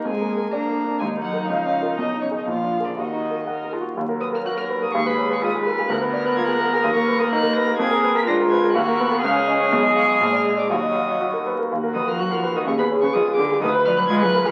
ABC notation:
X:1
M:2/4
L:1/16
Q:1/4=125
K:Ebm
V:1 name="Violin"
a4 b4 | a2 g2 f4 | e2 d e f3 =d | e6 z2 |
z2 e' f' g' f'2 e' | d' c'2 d' e'2 f'2 | g'2 f' g' a' g'2 f' | e' d'2 e' g'2 b'2 |
a'3 c'' b'2 a'2 | g'4 f'4 | z2 d' e' f'3 =d' | e'6 z2 |
z2 e' f' g' f'2 e' | d' c'2 d' e'2 =d'2 | e'2 f' g' a' g'2 f' |]
V:2 name="Grand piano"
(3F,,2 B,2 B2 (3=d2 B2 =D2 | (3E,,2 B,2 [EB]2 (3D,,2 D2 [FB]2 | (3C,,2 E2 [Ae]2 (3B,,,2 =D2 [AB]2 | (3E,,2 E2 B2 (3g2 B2 G2 |
E,, B c B G B c B | E,, c d c F A B A | =D,, =B =d B F A _B A | E,, B c B E B c B |
F,, B c B =D B c B | E,, B c B D,, d e d | C,, e f e B,,, =d e d | E,, e f e G B c B |
E,, B c B G B c B | E,, c d c F A B A | =D,, =B =d B F A _B A |]
V:3 name="Viola"
A4 =D4 | E8- | E4 F4 | G4 B2 F2 |
G,8 | A,8 | =B,8 | B,8 |
B,4 A,4 | B,2 C2 D4 | A,4 A,4 | G,6 z2 |
G8 | A8 | =B4 B4 |]
V:4 name="Cello" clef=bass
A,4 B,4 | A,2 G,2 F,4 | E,2 D, E, F,3 =D, | E,6 z2 |
z4 B4 | A4 c4 | B8- | B8 |
A4 F4 | G4 A4- | A8 | G6 z2 |
z2 E, F, G, F,2 E, | D, C,2 D, E,2 =D,2 | E,2 F, G, A, G,2 F, |]